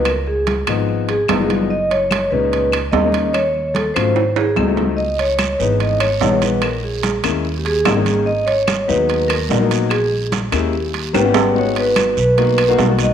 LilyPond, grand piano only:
\new Staff \with { instrumentName = "Grand piano" } { \time 4/4 \key gis \minor \tempo 4 = 146 r4. <eis gis b dis'>4 r8 <eis gis b dis'>16 <eis gis b dis'>8. | r4. <ais, gis cis' dis'>4 r8 <gis ais cis' dis'>16 <gis ais cis' dis'>8. | r4. <fis a cis' eis'>8 r4 <fis a bis dis'>16 <fis a bis dis'>8. | r4. <e gis b dis'>4 r8 <e gis b dis'>16 <e gis b dis'>8. |
r4. <gis ais cis' e'>8 r4 <g ais cis' dis'>16 <dis ais cis' dis'>8. | r4. <fis gis b dis'>4 r8 <fis ais b dis'>16 <fis ais b dis'>8. | r4. <gis ais cis' e'>8 r4 <ais b cis' g'>16 <g b cis' g'>8. | <gis b dis' fis'>4. r8 <ais b dis' fis'>8 r16 <ais b dis' fis'>16 r16 <ais b dis' fis'>8. | }